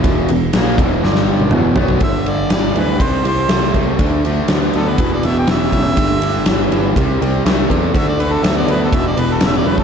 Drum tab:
RD |x-x-x-x---------|x-x-x-x-x-x-x-x-|x-x-x-x-x-x-x-x-|x-x-x-x-x-x-x-x-|
SD |----o---oo------|----o-------o---|----o-------o---|----o-------o---|
T1 |-----------o----|----------------|----------------|----------------|
T2 |------------o---|----------------|----------------|----------------|
FT |--------------oo|----------------|----------------|----------------|
BD |o-----o---------|o-------o-----o-|o-------o-----o-|o-------o-----o-|

RD |x-x-x-x-x-x-x---|
SD |----o-------o---|
T1 |--------------o-|
T2 |----------------|
FT |----------------|
BD |o-------o------o|